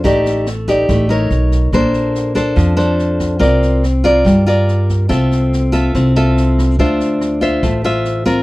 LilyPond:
<<
  \new Staff \with { instrumentName = "Nylon-string guitar" } { \time 4/4 \key f \major \tempo 4 = 142 << { <ees' g' d''>4 r8 <ees' g' d''>4 <ees' bes' cis''>4. | <d' a' c''>4. <d' a' c''>4 <d' a' c''>4. | <f' bes' d''>4 r8 <f' bes' d''>4 <f' bes' d''>4. | <f' a' e''>4. <f' a' e''>4 <f' a' e''>4. |
\key d \minor <f' c'' e''>4. <f' c'' e''>4 <f' c'' e''>4 <c' f' bes'>8 | } \\ { a2 a4 r4 | bes2 f2 | c'2 g2 | c'2 c'2 |
d'2 a2 | } >> }
  \new Staff \with { instrumentName = "Upright bass" } { \clef bass \time 4/4 \key f \major a,,2 a,,4 b,,4 | bes,,2 f,2 | c,2 g,2 | c,2 c,2 |
\key d \minor d,2 a,,2 | }
  \new DrumStaff \with { instrumentName = "Drums" } \drummode { \time 4/4 <bd sn>8 sn8 <ss sn>8 <bd sn>8 <bd ss sn>8 sn8 sn8 <bd sn>8 | <bd ss sn>8 sn8 sn8 <bd ss sn>8 <bd sn>8 sn8 sn8 <bd ss sn>8 | <bd sn>8 sn8 <ss sn>8 <bd sn>8 <bd ss sn>8 sn8 sn8 <bd sn>8 | <bd ss sn>8 sn8 sn8 <bd ss sn>8 <bd sn>8 sn8 sn8 <bd ss sn>8 |
<bd sn>8 sn8 <ss sn>8 <bd sn>8 <bd ss sn>8 sn8 sn8 <bd sn>8 | }
>>